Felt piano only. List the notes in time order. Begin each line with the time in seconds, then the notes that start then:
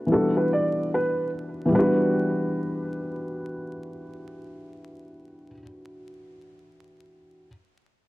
Already playing: G3 A3 B3 D4 F#4
0.06 E3 G3 B3
0.12 D4 F#4
1.65 E3 G3
1.72 B3 D4
1.79 F#4